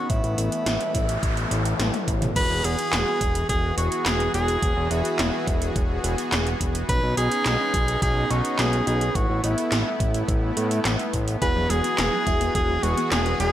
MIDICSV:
0, 0, Header, 1, 8, 480
1, 0, Start_track
1, 0, Key_signature, 4, "major"
1, 0, Tempo, 566038
1, 83, Time_signature, 4, 2, 24, 8
1, 11465, End_track
2, 0, Start_track
2, 0, Title_t, "Tenor saxophone"
2, 0, Program_c, 0, 66
2, 0, Note_on_c, 0, 66, 99
2, 83, Note_on_c, 0, 64, 88
2, 96, Note_off_c, 0, 66, 0
2, 1523, Note_off_c, 0, 64, 0
2, 2004, Note_on_c, 0, 71, 116
2, 2244, Note_on_c, 0, 68, 111
2, 2256, Note_off_c, 0, 71, 0
2, 2958, Note_off_c, 0, 68, 0
2, 2963, Note_on_c, 0, 68, 103
2, 3186, Note_off_c, 0, 68, 0
2, 3202, Note_on_c, 0, 66, 94
2, 3441, Note_on_c, 0, 68, 102
2, 3454, Note_off_c, 0, 66, 0
2, 3677, Note_off_c, 0, 68, 0
2, 3682, Note_on_c, 0, 68, 107
2, 4163, Note_on_c, 0, 64, 90
2, 4176, Note_off_c, 0, 68, 0
2, 4883, Note_off_c, 0, 64, 0
2, 5843, Note_on_c, 0, 71, 118
2, 6066, Note_off_c, 0, 71, 0
2, 6083, Note_on_c, 0, 68, 113
2, 6769, Note_off_c, 0, 68, 0
2, 6804, Note_on_c, 0, 68, 106
2, 7045, Note_on_c, 0, 66, 96
2, 7058, Note_off_c, 0, 68, 0
2, 7279, Note_off_c, 0, 66, 0
2, 7284, Note_on_c, 0, 68, 103
2, 7507, Note_off_c, 0, 68, 0
2, 7525, Note_on_c, 0, 68, 98
2, 7765, Note_on_c, 0, 66, 95
2, 7777, Note_off_c, 0, 68, 0
2, 7999, Note_off_c, 0, 66, 0
2, 8004, Note_on_c, 0, 64, 86
2, 8689, Note_off_c, 0, 64, 0
2, 9681, Note_on_c, 0, 71, 114
2, 9922, Note_on_c, 0, 68, 113
2, 9934, Note_off_c, 0, 71, 0
2, 10638, Note_off_c, 0, 68, 0
2, 10643, Note_on_c, 0, 68, 109
2, 10882, Note_on_c, 0, 66, 98
2, 10895, Note_off_c, 0, 68, 0
2, 11117, Note_off_c, 0, 66, 0
2, 11122, Note_on_c, 0, 68, 103
2, 11346, Note_off_c, 0, 68, 0
2, 11362, Note_on_c, 0, 68, 109
2, 11465, Note_off_c, 0, 68, 0
2, 11465, End_track
3, 0, Start_track
3, 0, Title_t, "FM electric piano"
3, 0, Program_c, 1, 5
3, 9681, Note_on_c, 1, 68, 88
3, 9682, Note_on_c, 1, 64, 80
3, 9682, Note_on_c, 1, 66, 73
3, 10373, Note_off_c, 1, 64, 0
3, 10373, Note_off_c, 1, 68, 0
3, 10374, Note_off_c, 1, 66, 0
3, 10402, Note_on_c, 1, 64, 77
3, 10402, Note_on_c, 1, 66, 72
3, 10402, Note_on_c, 1, 68, 87
3, 11465, Note_off_c, 1, 64, 0
3, 11465, Note_off_c, 1, 66, 0
3, 11465, Note_off_c, 1, 68, 0
3, 11465, End_track
4, 0, Start_track
4, 0, Title_t, "Supersaw synth"
4, 0, Program_c, 2, 81
4, 0, Note_on_c, 2, 59, 75
4, 82, Note_on_c, 2, 57, 77
4, 83, Note_on_c, 2, 52, 83
4, 1969, Note_off_c, 2, 59, 0
4, 1983, Note_off_c, 2, 57, 0
4, 1984, Note_off_c, 2, 52, 0
4, 2002, Note_on_c, 2, 52, 84
4, 2002, Note_on_c, 2, 59, 75
4, 2003, Note_on_c, 2, 66, 79
4, 2003, Note_on_c, 2, 68, 96
4, 5809, Note_off_c, 2, 52, 0
4, 5809, Note_off_c, 2, 66, 0
4, 5809, Note_off_c, 2, 68, 0
4, 5843, Note_on_c, 2, 61, 78
4, 5844, Note_on_c, 2, 63, 96
4, 7744, Note_off_c, 2, 61, 0
4, 7744, Note_off_c, 2, 63, 0
4, 7762, Note_on_c, 2, 57, 85
4, 7762, Note_on_c, 2, 64, 95
4, 9663, Note_off_c, 2, 57, 0
4, 9663, Note_off_c, 2, 64, 0
4, 9683, Note_on_c, 2, 66, 76
4, 9683, Note_on_c, 2, 68, 92
4, 9684, Note_on_c, 2, 52, 88
4, 11465, Note_off_c, 2, 52, 0
4, 11465, Note_off_c, 2, 59, 0
4, 11465, Note_off_c, 2, 66, 0
4, 11465, Note_off_c, 2, 68, 0
4, 11465, End_track
5, 0, Start_track
5, 0, Title_t, "Synth arpeggio sound"
5, 0, Program_c, 3, 84
5, 9682, Note_on_c, 3, 52, 87
5, 9785, Note_off_c, 3, 52, 0
5, 9802, Note_on_c, 3, 54, 78
5, 9916, Note_off_c, 3, 54, 0
5, 9922, Note_on_c, 3, 56, 73
5, 10036, Note_off_c, 3, 56, 0
5, 10042, Note_on_c, 3, 59, 101
5, 10156, Note_off_c, 3, 59, 0
5, 10163, Note_on_c, 3, 52, 88
5, 10265, Note_off_c, 3, 52, 0
5, 10283, Note_on_c, 3, 54, 80
5, 10397, Note_off_c, 3, 54, 0
5, 10404, Note_on_c, 3, 56, 79
5, 10517, Note_off_c, 3, 56, 0
5, 10523, Note_on_c, 3, 59, 104
5, 10637, Note_off_c, 3, 59, 0
5, 10643, Note_on_c, 3, 52, 82
5, 10745, Note_off_c, 3, 52, 0
5, 10763, Note_on_c, 3, 54, 78
5, 10877, Note_off_c, 3, 54, 0
5, 10882, Note_on_c, 3, 56, 82
5, 10996, Note_off_c, 3, 56, 0
5, 11003, Note_on_c, 3, 59, 102
5, 11117, Note_off_c, 3, 59, 0
5, 11123, Note_on_c, 3, 52, 85
5, 11225, Note_off_c, 3, 52, 0
5, 11243, Note_on_c, 3, 54, 79
5, 11357, Note_off_c, 3, 54, 0
5, 11364, Note_on_c, 3, 56, 76
5, 11465, Note_off_c, 3, 56, 0
5, 11465, End_track
6, 0, Start_track
6, 0, Title_t, "Analog synth bass"
6, 0, Program_c, 4, 38
6, 82, Note_on_c, 4, 33, 101
6, 180, Note_off_c, 4, 33, 0
6, 202, Note_on_c, 4, 33, 92
6, 300, Note_off_c, 4, 33, 0
6, 322, Note_on_c, 4, 33, 80
6, 420, Note_off_c, 4, 33, 0
6, 561, Note_on_c, 4, 33, 82
6, 660, Note_off_c, 4, 33, 0
6, 802, Note_on_c, 4, 33, 96
6, 998, Note_off_c, 4, 33, 0
6, 1042, Note_on_c, 4, 33, 80
6, 1238, Note_off_c, 4, 33, 0
6, 1281, Note_on_c, 4, 33, 89
6, 1477, Note_off_c, 4, 33, 0
6, 1521, Note_on_c, 4, 33, 78
6, 1620, Note_off_c, 4, 33, 0
6, 1762, Note_on_c, 4, 33, 101
6, 1958, Note_off_c, 4, 33, 0
6, 2001, Note_on_c, 4, 28, 103
6, 2100, Note_off_c, 4, 28, 0
6, 2122, Note_on_c, 4, 28, 94
6, 2220, Note_off_c, 4, 28, 0
6, 2242, Note_on_c, 4, 28, 87
6, 2340, Note_off_c, 4, 28, 0
6, 2482, Note_on_c, 4, 28, 83
6, 2580, Note_off_c, 4, 28, 0
6, 2721, Note_on_c, 4, 28, 96
6, 2918, Note_off_c, 4, 28, 0
6, 2962, Note_on_c, 4, 28, 97
6, 3158, Note_off_c, 4, 28, 0
6, 3202, Note_on_c, 4, 28, 105
6, 3300, Note_off_c, 4, 28, 0
6, 3441, Note_on_c, 4, 28, 83
6, 3638, Note_off_c, 4, 28, 0
6, 3682, Note_on_c, 4, 28, 91
6, 3878, Note_off_c, 4, 28, 0
6, 3922, Note_on_c, 4, 28, 102
6, 4020, Note_off_c, 4, 28, 0
6, 4042, Note_on_c, 4, 28, 100
6, 4140, Note_off_c, 4, 28, 0
6, 4161, Note_on_c, 4, 28, 84
6, 4260, Note_off_c, 4, 28, 0
6, 4402, Note_on_c, 4, 28, 82
6, 4500, Note_off_c, 4, 28, 0
6, 4642, Note_on_c, 4, 28, 99
6, 4838, Note_off_c, 4, 28, 0
6, 4882, Note_on_c, 4, 28, 98
6, 5078, Note_off_c, 4, 28, 0
6, 5121, Note_on_c, 4, 28, 104
6, 5220, Note_off_c, 4, 28, 0
6, 5361, Note_on_c, 4, 28, 82
6, 5557, Note_off_c, 4, 28, 0
6, 5602, Note_on_c, 4, 28, 89
6, 5798, Note_off_c, 4, 28, 0
6, 5842, Note_on_c, 4, 35, 104
6, 5940, Note_off_c, 4, 35, 0
6, 5962, Note_on_c, 4, 35, 100
6, 6060, Note_off_c, 4, 35, 0
6, 6082, Note_on_c, 4, 35, 83
6, 6180, Note_off_c, 4, 35, 0
6, 6322, Note_on_c, 4, 35, 83
6, 6420, Note_off_c, 4, 35, 0
6, 6562, Note_on_c, 4, 35, 94
6, 6758, Note_off_c, 4, 35, 0
6, 6801, Note_on_c, 4, 35, 103
6, 6998, Note_off_c, 4, 35, 0
6, 7042, Note_on_c, 4, 35, 107
6, 7140, Note_off_c, 4, 35, 0
6, 7283, Note_on_c, 4, 35, 82
6, 7478, Note_off_c, 4, 35, 0
6, 7523, Note_on_c, 4, 35, 88
6, 7718, Note_off_c, 4, 35, 0
6, 7762, Note_on_c, 4, 33, 105
6, 7860, Note_off_c, 4, 33, 0
6, 7883, Note_on_c, 4, 33, 97
6, 7981, Note_off_c, 4, 33, 0
6, 8003, Note_on_c, 4, 33, 86
6, 8101, Note_off_c, 4, 33, 0
6, 8242, Note_on_c, 4, 33, 82
6, 8340, Note_off_c, 4, 33, 0
6, 8481, Note_on_c, 4, 33, 98
6, 8677, Note_off_c, 4, 33, 0
6, 8721, Note_on_c, 4, 33, 99
6, 8918, Note_off_c, 4, 33, 0
6, 8963, Note_on_c, 4, 45, 83
6, 9159, Note_off_c, 4, 45, 0
6, 9203, Note_on_c, 4, 33, 81
6, 9301, Note_off_c, 4, 33, 0
6, 9442, Note_on_c, 4, 33, 83
6, 9638, Note_off_c, 4, 33, 0
6, 9682, Note_on_c, 4, 28, 103
6, 9780, Note_off_c, 4, 28, 0
6, 9802, Note_on_c, 4, 28, 97
6, 9900, Note_off_c, 4, 28, 0
6, 9922, Note_on_c, 4, 28, 85
6, 10020, Note_off_c, 4, 28, 0
6, 10163, Note_on_c, 4, 28, 80
6, 10261, Note_off_c, 4, 28, 0
6, 10402, Note_on_c, 4, 28, 97
6, 10598, Note_off_c, 4, 28, 0
6, 10642, Note_on_c, 4, 28, 99
6, 10838, Note_off_c, 4, 28, 0
6, 10882, Note_on_c, 4, 28, 108
6, 10980, Note_off_c, 4, 28, 0
6, 11121, Note_on_c, 4, 28, 85
6, 11317, Note_off_c, 4, 28, 0
6, 11363, Note_on_c, 4, 28, 91
6, 11465, Note_off_c, 4, 28, 0
6, 11465, End_track
7, 0, Start_track
7, 0, Title_t, "Noise sweep"
7, 0, Program_c, 5, 103
7, 82, Note_on_c, 5, 60, 74
7, 2003, Note_off_c, 5, 60, 0
7, 11465, End_track
8, 0, Start_track
8, 0, Title_t, "Drums"
8, 82, Note_on_c, 9, 36, 112
8, 83, Note_on_c, 9, 42, 78
8, 167, Note_off_c, 9, 36, 0
8, 167, Note_off_c, 9, 42, 0
8, 203, Note_on_c, 9, 42, 37
8, 287, Note_off_c, 9, 42, 0
8, 323, Note_on_c, 9, 42, 79
8, 408, Note_off_c, 9, 42, 0
8, 443, Note_on_c, 9, 42, 53
8, 528, Note_off_c, 9, 42, 0
8, 563, Note_on_c, 9, 38, 116
8, 563, Note_on_c, 9, 42, 79
8, 648, Note_off_c, 9, 38, 0
8, 648, Note_off_c, 9, 42, 0
8, 683, Note_on_c, 9, 42, 36
8, 768, Note_off_c, 9, 42, 0
8, 802, Note_on_c, 9, 36, 100
8, 803, Note_on_c, 9, 42, 77
8, 887, Note_off_c, 9, 36, 0
8, 888, Note_off_c, 9, 42, 0
8, 923, Note_on_c, 9, 42, 53
8, 1008, Note_off_c, 9, 42, 0
8, 1042, Note_on_c, 9, 36, 113
8, 1043, Note_on_c, 9, 42, 77
8, 1127, Note_off_c, 9, 36, 0
8, 1128, Note_off_c, 9, 42, 0
8, 1163, Note_on_c, 9, 42, 37
8, 1248, Note_off_c, 9, 42, 0
8, 1283, Note_on_c, 9, 42, 78
8, 1368, Note_off_c, 9, 42, 0
8, 1403, Note_on_c, 9, 42, 51
8, 1488, Note_off_c, 9, 42, 0
8, 1522, Note_on_c, 9, 38, 111
8, 1522, Note_on_c, 9, 42, 78
8, 1522, Note_on_c, 9, 48, 61
8, 1607, Note_off_c, 9, 38, 0
8, 1607, Note_off_c, 9, 42, 0
8, 1607, Note_off_c, 9, 48, 0
8, 1643, Note_on_c, 9, 38, 34
8, 1643, Note_on_c, 9, 42, 37
8, 1643, Note_on_c, 9, 48, 60
8, 1728, Note_off_c, 9, 38, 0
8, 1728, Note_off_c, 9, 42, 0
8, 1728, Note_off_c, 9, 48, 0
8, 1762, Note_on_c, 9, 36, 59
8, 1763, Note_on_c, 9, 42, 80
8, 1847, Note_off_c, 9, 36, 0
8, 1848, Note_off_c, 9, 42, 0
8, 1882, Note_on_c, 9, 42, 50
8, 1882, Note_on_c, 9, 45, 82
8, 1967, Note_off_c, 9, 42, 0
8, 1967, Note_off_c, 9, 45, 0
8, 2002, Note_on_c, 9, 36, 120
8, 2002, Note_on_c, 9, 42, 83
8, 2002, Note_on_c, 9, 49, 108
8, 2087, Note_off_c, 9, 36, 0
8, 2087, Note_off_c, 9, 42, 0
8, 2087, Note_off_c, 9, 49, 0
8, 2242, Note_on_c, 9, 42, 83
8, 2327, Note_off_c, 9, 42, 0
8, 2363, Note_on_c, 9, 42, 56
8, 2447, Note_off_c, 9, 42, 0
8, 2483, Note_on_c, 9, 38, 120
8, 2483, Note_on_c, 9, 39, 103
8, 2483, Note_on_c, 9, 42, 84
8, 2568, Note_off_c, 9, 38, 0
8, 2568, Note_off_c, 9, 39, 0
8, 2568, Note_off_c, 9, 42, 0
8, 2722, Note_on_c, 9, 36, 105
8, 2723, Note_on_c, 9, 42, 83
8, 2806, Note_off_c, 9, 36, 0
8, 2807, Note_off_c, 9, 42, 0
8, 2842, Note_on_c, 9, 42, 57
8, 2927, Note_off_c, 9, 42, 0
8, 2962, Note_on_c, 9, 36, 120
8, 2963, Note_on_c, 9, 42, 81
8, 3047, Note_off_c, 9, 36, 0
8, 3048, Note_off_c, 9, 42, 0
8, 3203, Note_on_c, 9, 42, 83
8, 3288, Note_off_c, 9, 42, 0
8, 3323, Note_on_c, 9, 42, 56
8, 3408, Note_off_c, 9, 42, 0
8, 3443, Note_on_c, 9, 38, 122
8, 3443, Note_on_c, 9, 39, 98
8, 3443, Note_on_c, 9, 42, 85
8, 3528, Note_off_c, 9, 38, 0
8, 3528, Note_off_c, 9, 39, 0
8, 3528, Note_off_c, 9, 42, 0
8, 3563, Note_on_c, 9, 42, 38
8, 3648, Note_off_c, 9, 42, 0
8, 3683, Note_on_c, 9, 42, 84
8, 3767, Note_off_c, 9, 42, 0
8, 3802, Note_on_c, 9, 42, 57
8, 3887, Note_off_c, 9, 42, 0
8, 3922, Note_on_c, 9, 36, 127
8, 3922, Note_on_c, 9, 42, 84
8, 4007, Note_off_c, 9, 36, 0
8, 4007, Note_off_c, 9, 42, 0
8, 4162, Note_on_c, 9, 42, 84
8, 4247, Note_off_c, 9, 42, 0
8, 4283, Note_on_c, 9, 42, 56
8, 4367, Note_off_c, 9, 42, 0
8, 4403, Note_on_c, 9, 38, 123
8, 4403, Note_on_c, 9, 39, 97
8, 4403, Note_on_c, 9, 42, 82
8, 4487, Note_off_c, 9, 38, 0
8, 4487, Note_off_c, 9, 39, 0
8, 4487, Note_off_c, 9, 42, 0
8, 4642, Note_on_c, 9, 36, 112
8, 4643, Note_on_c, 9, 42, 81
8, 4727, Note_off_c, 9, 36, 0
8, 4728, Note_off_c, 9, 42, 0
8, 4763, Note_on_c, 9, 42, 58
8, 4848, Note_off_c, 9, 42, 0
8, 4882, Note_on_c, 9, 36, 124
8, 4883, Note_on_c, 9, 42, 81
8, 4967, Note_off_c, 9, 36, 0
8, 4968, Note_off_c, 9, 42, 0
8, 5123, Note_on_c, 9, 42, 83
8, 5208, Note_off_c, 9, 42, 0
8, 5243, Note_on_c, 9, 42, 54
8, 5328, Note_off_c, 9, 42, 0
8, 5363, Note_on_c, 9, 38, 122
8, 5363, Note_on_c, 9, 39, 97
8, 5363, Note_on_c, 9, 42, 86
8, 5448, Note_off_c, 9, 38, 0
8, 5448, Note_off_c, 9, 39, 0
8, 5448, Note_off_c, 9, 42, 0
8, 5483, Note_on_c, 9, 42, 38
8, 5568, Note_off_c, 9, 42, 0
8, 5602, Note_on_c, 9, 36, 64
8, 5603, Note_on_c, 9, 42, 81
8, 5687, Note_off_c, 9, 36, 0
8, 5688, Note_off_c, 9, 42, 0
8, 5723, Note_on_c, 9, 42, 56
8, 5808, Note_off_c, 9, 42, 0
8, 5842, Note_on_c, 9, 36, 127
8, 5844, Note_on_c, 9, 42, 86
8, 5927, Note_off_c, 9, 36, 0
8, 5928, Note_off_c, 9, 42, 0
8, 6083, Note_on_c, 9, 42, 82
8, 6168, Note_off_c, 9, 42, 0
8, 6203, Note_on_c, 9, 42, 55
8, 6288, Note_off_c, 9, 42, 0
8, 6323, Note_on_c, 9, 38, 127
8, 6323, Note_on_c, 9, 39, 95
8, 6323, Note_on_c, 9, 42, 83
8, 6408, Note_off_c, 9, 38, 0
8, 6408, Note_off_c, 9, 39, 0
8, 6408, Note_off_c, 9, 42, 0
8, 6562, Note_on_c, 9, 36, 115
8, 6563, Note_on_c, 9, 42, 80
8, 6647, Note_off_c, 9, 36, 0
8, 6648, Note_off_c, 9, 42, 0
8, 6684, Note_on_c, 9, 42, 56
8, 6768, Note_off_c, 9, 42, 0
8, 6802, Note_on_c, 9, 36, 127
8, 6803, Note_on_c, 9, 42, 83
8, 6886, Note_off_c, 9, 36, 0
8, 6888, Note_off_c, 9, 42, 0
8, 7043, Note_on_c, 9, 42, 82
8, 7128, Note_off_c, 9, 42, 0
8, 7163, Note_on_c, 9, 42, 54
8, 7248, Note_off_c, 9, 42, 0
8, 7283, Note_on_c, 9, 38, 127
8, 7283, Note_on_c, 9, 39, 95
8, 7283, Note_on_c, 9, 42, 84
8, 7368, Note_off_c, 9, 38, 0
8, 7368, Note_off_c, 9, 39, 0
8, 7368, Note_off_c, 9, 42, 0
8, 7403, Note_on_c, 9, 42, 38
8, 7488, Note_off_c, 9, 42, 0
8, 7523, Note_on_c, 9, 42, 79
8, 7608, Note_off_c, 9, 42, 0
8, 7643, Note_on_c, 9, 42, 54
8, 7728, Note_off_c, 9, 42, 0
8, 7761, Note_on_c, 9, 36, 125
8, 7763, Note_on_c, 9, 42, 82
8, 7846, Note_off_c, 9, 36, 0
8, 7848, Note_off_c, 9, 42, 0
8, 8003, Note_on_c, 9, 42, 80
8, 8088, Note_off_c, 9, 42, 0
8, 8122, Note_on_c, 9, 42, 52
8, 8207, Note_off_c, 9, 42, 0
8, 8242, Note_on_c, 9, 38, 127
8, 8242, Note_on_c, 9, 39, 90
8, 8242, Note_on_c, 9, 42, 79
8, 8327, Note_off_c, 9, 38, 0
8, 8327, Note_off_c, 9, 39, 0
8, 8327, Note_off_c, 9, 42, 0
8, 8481, Note_on_c, 9, 36, 111
8, 8482, Note_on_c, 9, 42, 78
8, 8566, Note_off_c, 9, 36, 0
8, 8567, Note_off_c, 9, 42, 0
8, 8602, Note_on_c, 9, 42, 54
8, 8687, Note_off_c, 9, 42, 0
8, 8721, Note_on_c, 9, 36, 125
8, 8723, Note_on_c, 9, 42, 77
8, 8806, Note_off_c, 9, 36, 0
8, 8807, Note_off_c, 9, 42, 0
8, 8962, Note_on_c, 9, 42, 78
8, 9047, Note_off_c, 9, 42, 0
8, 9083, Note_on_c, 9, 42, 52
8, 9168, Note_off_c, 9, 42, 0
8, 9203, Note_on_c, 9, 38, 123
8, 9203, Note_on_c, 9, 39, 92
8, 9203, Note_on_c, 9, 42, 80
8, 9288, Note_off_c, 9, 38, 0
8, 9288, Note_off_c, 9, 39, 0
8, 9288, Note_off_c, 9, 42, 0
8, 9323, Note_on_c, 9, 42, 36
8, 9408, Note_off_c, 9, 42, 0
8, 9442, Note_on_c, 9, 36, 64
8, 9442, Note_on_c, 9, 42, 80
8, 9526, Note_off_c, 9, 36, 0
8, 9527, Note_off_c, 9, 42, 0
8, 9563, Note_on_c, 9, 42, 51
8, 9647, Note_off_c, 9, 42, 0
8, 9682, Note_on_c, 9, 36, 118
8, 9683, Note_on_c, 9, 42, 77
8, 9767, Note_off_c, 9, 36, 0
8, 9767, Note_off_c, 9, 42, 0
8, 9922, Note_on_c, 9, 42, 77
8, 10007, Note_off_c, 9, 42, 0
8, 10042, Note_on_c, 9, 42, 52
8, 10127, Note_off_c, 9, 42, 0
8, 10162, Note_on_c, 9, 38, 126
8, 10162, Note_on_c, 9, 39, 93
8, 10162, Note_on_c, 9, 42, 80
8, 10247, Note_off_c, 9, 38, 0
8, 10247, Note_off_c, 9, 39, 0
8, 10247, Note_off_c, 9, 42, 0
8, 10402, Note_on_c, 9, 36, 106
8, 10402, Note_on_c, 9, 42, 76
8, 10487, Note_off_c, 9, 36, 0
8, 10487, Note_off_c, 9, 42, 0
8, 10523, Note_on_c, 9, 42, 51
8, 10607, Note_off_c, 9, 42, 0
8, 10642, Note_on_c, 9, 36, 121
8, 10643, Note_on_c, 9, 42, 74
8, 10727, Note_off_c, 9, 36, 0
8, 10727, Note_off_c, 9, 42, 0
8, 10883, Note_on_c, 9, 42, 75
8, 10968, Note_off_c, 9, 42, 0
8, 11003, Note_on_c, 9, 42, 52
8, 11088, Note_off_c, 9, 42, 0
8, 11123, Note_on_c, 9, 38, 124
8, 11123, Note_on_c, 9, 39, 93
8, 11123, Note_on_c, 9, 42, 76
8, 11208, Note_off_c, 9, 38, 0
8, 11208, Note_off_c, 9, 39, 0
8, 11208, Note_off_c, 9, 42, 0
8, 11243, Note_on_c, 9, 42, 34
8, 11328, Note_off_c, 9, 42, 0
8, 11363, Note_on_c, 9, 42, 75
8, 11448, Note_off_c, 9, 42, 0
8, 11465, End_track
0, 0, End_of_file